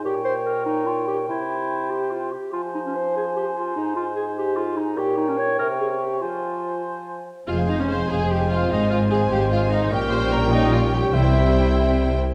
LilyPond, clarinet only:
\new Staff \with { instrumentName = "Clarinet" } { \time 6/8 \key f \minor \tempo 4. = 97 g'8 c''8 bes'8 ees'8 f'8 g'8 | e'4. g'8 f'8 g'8 | f'8 ees'16 des'16 c''8 aes'8 g'8 f'8 | ees'8 f'8 aes'8 g'8 f'8 ees'8 |
g'8 ees'16 des'16 des''8 bes'8 aes'8 g'8 | f'4. r4. | aes'4. c''4.~ | c''4. c''4. |
bes'4. g''4. | e''2~ e''16 r8. | }